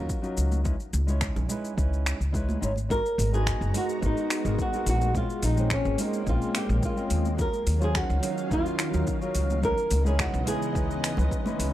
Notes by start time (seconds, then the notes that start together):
Already playing: F#3 C#4 D#4 F4 A#4
0.09 kick, shaker
0.22 F#3 C#4 D#4 F4 A#4, shaker
0.37 C#2, shaker
0.52 high conga, shaker
0.63 G#3 C#4 D#4 E4 B4, kick, shaker
0.80 shaker
0.93 C#2, high conga, shaker
1.07 G#3 C#4 D#4 E4 C#5, shaker
1.21 finger snap, kick, shaker
1.36 B1, low conga, shaker
1.49 G#3 C#4 D#4 E4 B4, shaker
1.65 shaker
1.76 C#2 G#3 C#4 D#4 E4 B4, kick, shaker
1.93 shaker
2.06 finger snap, shaker
2.20 C#2, shaker
2.32 G#3 C#4 D#4 E4 B4, kick, shaker
2.49 high conga, shaker
2.60 G#1 G#3 C#4 D#4 E4 C#5, shaker
2.76 high conga, shaker
2.89 G#3 B3 D#4 F#4 A#4 A#5, kick, shaker
3.06 shaker
3.18 G#1, open hi-hat, high conga, shaker
3.32 G#3 B3 D#4 F#4 G#4 B4, shaker
3.46 finger snap, kick, shaker
3.61 F#1, shaker
3.74 G#3 B3 D#4 F#4 A#4, open hi-hat, shaker
3.89 shaker
4.01 G#1 G#3 B3 D#4 F#4 A#4, kick, shaker
4.06 D#4
4.17 shaker
4.30 finger snap, open hi-hat, shaker
4.45 G#1 G#3 B3 D#4 F#4 A#4, shaker
4.59 F#4, kick, shaker
4.73 G#3 B3 D#4 F#4 A#4, shaker
4.86 A#1 F#4, open hi-hat, shaker
5.01 high conga, shaker
5.13 G#3 A#3 C4 C#4 F4 A#4, kick, shaker
5.30 shaker
5.43 A#1 D#4, open hi-hat, high conga, shaker
5.56 G#3 C4 C#4 F4 C5, shaker
5.70 C#4, finger snap, kick, shaker
5.85 G#1, shaker
5.98 G#3 C4 C#4 D#4 F4 A#4, open hi-hat, shaker
6.13 shaker
6.26 A#1 G#3 C4 C#4 F4 A#4, kick, shaker
6.42 shaker
6.55 G4, finger snap, open hi-hat, shaker
6.68 A#1 G#3 C4 C#4 F4 A#4, shaker
6.83 F4, kick, shaker
6.96 G#3 C4 C#4 F4 A#4, shaker
7.10 D#2, open hi-hat, shaker
7.25 high conga, shaker
7.37 D#3 F#3 C#4 D#4 F4 A#4 F5, kick, shaker
7.41 A#4
7.54 shaker
7.67 D#2, open hi-hat, high conga, shaker
7.79 F#3 C#4 D#4 F4 C5, shaker
7.84 G#4
7.95 F#4, finger snap, kick, shaker
8.10 C#2, shaker
8.21 F#3 C#4 D#4 F4 A#4, open hi-hat, shaker
8.38 shaker
8.49 D#2 F#3 C#4 D#4 F4 A#4, kick, shaker
8.66 shaker
8.79 finger snap, open hi-hat, shaker
8.92 D#2 F#3 C#4 D#4 F4 A#4, shaker
9.07 kick, shaker
9.21 F#3 C#4 D#4 F4 A#4, shaker
9.35 C#2, open hi-hat, shaker
9.50 high conga, shaker
9.62 C#3 E3 G#3 B3 C#4 D#4 E4 A#4 B4 D#5, kick, shaker
9.78 shaker
9.91 C#2, open hi-hat, high conga, shaker
10.04 G#3 C#4 D#4 E4 G#4 C#5, shaker
10.19 F#4, finger snap, kick, shaker
10.34 B1, shaker
10.44 G#3 C#4 D#4 E4 G#4 B4, open hi-hat, shaker
10.62 shaker
10.73 C#2 G#3 C#4 D#4 E4 B4, kick, shaker
10.91 shaker
11.04 finger snap, open hi-hat, shaker
11.16 C#2 G#3 C#4 D#4 E4 B4, low conga, shaker
11.31 kick, shaker
11.44 G#3 C#4 D#4 E4 B4, high conga, shaker
11.59 C#2, open hi-hat, shaker